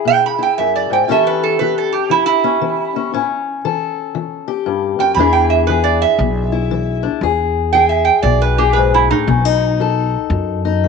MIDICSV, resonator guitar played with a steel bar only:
0, 0, Header, 1, 2, 480
1, 0, Start_track
1, 0, Tempo, 512821
1, 1015, Time_signature, 4, 2, 24, 8
1, 10185, End_track
2, 0, Start_track
2, 0, Title_t, "Resonator guitar played with a steel bar"
2, 0, Program_c, 0, 25
2, 70, Note_on_c, 0, 79, 100
2, 219, Note_off_c, 0, 79, 0
2, 242, Note_on_c, 0, 83, 77
2, 385, Note_off_c, 0, 83, 0
2, 399, Note_on_c, 0, 79, 75
2, 538, Note_off_c, 0, 79, 0
2, 542, Note_on_c, 0, 76, 79
2, 694, Note_off_c, 0, 76, 0
2, 707, Note_on_c, 0, 74, 65
2, 856, Note_off_c, 0, 74, 0
2, 870, Note_on_c, 0, 79, 76
2, 1018, Note_off_c, 0, 79, 0
2, 1046, Note_on_c, 0, 76, 68
2, 1186, Note_off_c, 0, 76, 0
2, 1187, Note_on_c, 0, 71, 78
2, 1336, Note_off_c, 0, 71, 0
2, 1343, Note_on_c, 0, 69, 71
2, 1489, Note_on_c, 0, 71, 74
2, 1494, Note_off_c, 0, 69, 0
2, 1646, Note_off_c, 0, 71, 0
2, 1665, Note_on_c, 0, 69, 72
2, 1803, Note_on_c, 0, 67, 68
2, 1814, Note_off_c, 0, 69, 0
2, 1963, Note_off_c, 0, 67, 0
2, 1977, Note_on_c, 0, 64, 82
2, 2104, Note_off_c, 0, 64, 0
2, 2115, Note_on_c, 0, 64, 100
2, 3053, Note_off_c, 0, 64, 0
2, 4679, Note_on_c, 0, 79, 82
2, 4815, Note_on_c, 0, 83, 78
2, 4839, Note_off_c, 0, 79, 0
2, 4986, Note_on_c, 0, 79, 77
2, 4987, Note_off_c, 0, 83, 0
2, 5147, Note_on_c, 0, 76, 69
2, 5152, Note_off_c, 0, 79, 0
2, 5306, Note_on_c, 0, 71, 79
2, 5313, Note_off_c, 0, 76, 0
2, 5463, Note_on_c, 0, 74, 82
2, 5473, Note_off_c, 0, 71, 0
2, 5631, Note_off_c, 0, 74, 0
2, 5632, Note_on_c, 0, 76, 90
2, 6571, Note_off_c, 0, 76, 0
2, 7232, Note_on_c, 0, 79, 82
2, 7386, Note_on_c, 0, 76, 71
2, 7396, Note_off_c, 0, 79, 0
2, 7532, Note_on_c, 0, 79, 74
2, 7553, Note_off_c, 0, 76, 0
2, 7698, Note_on_c, 0, 74, 83
2, 7706, Note_off_c, 0, 79, 0
2, 7869, Note_off_c, 0, 74, 0
2, 7877, Note_on_c, 0, 71, 85
2, 8033, Note_on_c, 0, 67, 74
2, 8039, Note_off_c, 0, 71, 0
2, 8172, Note_on_c, 0, 71, 70
2, 8197, Note_off_c, 0, 67, 0
2, 8346, Note_off_c, 0, 71, 0
2, 8371, Note_on_c, 0, 64, 73
2, 8519, Note_off_c, 0, 64, 0
2, 8523, Note_on_c, 0, 63, 80
2, 9459, Note_off_c, 0, 63, 0
2, 10185, End_track
0, 0, End_of_file